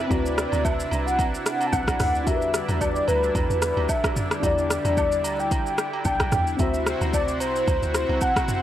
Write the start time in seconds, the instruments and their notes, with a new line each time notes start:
Already playing: analog synth pad C3 D4 E4 B4, soft synth lead E5
0.07 log drum bass D2, tine electric piano C4 E4 F#4, soft synth lead D5, kick, high agogo, shaker
0.13 tine electric piano B4
0.26 shaker
0.38 cross-stick, shaker
0.52 log drum bass D2, high agogo, shaker
0.64 soft synth lead E5, kick, low woodblock, shaker
0.80 shaker
0.91 log drum bass C2, high agogo, shaker
1.07 soft synth lead F#5, shaker
1.19 kick, high agogo, shaker
1.34 shaker
1.46 cross-stick, shaker
1.61 high agogo, shaker
1.67 soft synth lead A5
1.72 log drum bass B1, soft synth lead F#5, kick, low woodblock, shaker
1.88 kick, cross-stick, high agogo, shaker
2.00 log drum bass D2, cross-stick, mid tom, open hi-hat, shaker
2.15 shaker
2.24 log drum bass E2, analog synth pad D3 G3, tine electric piano D4 F#4, soft synth lead E5, kick, high agogo, shaker
2.28 tine electric piano G4 A#4
2.36 tine electric piano B4
2.42 shaker
2.54 cross-stick, shaker
2.68 log drum bass E2, high agogo, shaker
2.81 soft synth lead D5, kick, low woodblock, shaker
2.96 shaker
3.08 log drum bass D2, soft synth lead B4, high agogo, shaker
3.23 shaker
3.35 log drum bass E2, soft synth lead B4, kick, high agogo, shaker
3.50 log drum bass E2, shaker
3.62 cross-stick, shaker
3.77 log drum bass D2, high agogo
3.89 soft synth lead E5, kick, low woodblock, shaker
4.04 kick, cross-stick, high agogo, shaker
4.16 mid tom, shaker
4.31 cross-stick, shaker
4.40 log drum bass E2, tine electric piano D4 E4, soft synth lead D5, kick, high agogo, shaker
4.44 tine electric piano G4 D5
4.58 shaker
4.70 cross-stick, shaker
4.85 log drum bass E2, high agogo, shaker
4.97 soft synth lead D5, kick, low woodblock, shaker
5.12 shaker
5.24 log drum bass D2, high agogo, shaker
5.39 soft synth lead G5, shaker
5.51 kick, high agogo, shaker
5.66 shaker
5.78 cross-stick, shaker
5.93 high agogo
6.05 log drum bass B1, soft synth lead G5, kick, low woodblock, shaker
6.20 kick, cross-stick, high agogo, shaker
6.32 log drum bass E2, cross-stick, mid tom, shaker
6.47 shaker
6.56 log drum bass D2, analog synth pad C3 C4 E4 F#4, tine electric piano C4 E4 F#4, soft synth lead E5, kick, high agogo, shaker
6.62 tine electric piano C5
6.74 shaker
6.86 cross-stick, shaker
7.01 log drum bass D2, high agogo, shaker
7.13 soft synth lead D5, kick, low woodblock, shaker
7.28 shaker
7.40 log drum bass C2, soft synth lead C5, high agogo, shaker
7.56 shaker
7.68 log drum bass D2, soft synth lead C5, kick, high agogo, shaker
7.82 log drum bass D2, shaker
7.94 cross-stick, shaker
8.09 log drum bass C2, high agogo
8.21 soft synth lead F#5, kick, low woodblock, shaker
8.36 kick, cross-stick, high agogo, shaker
8.48 mid tom, shaker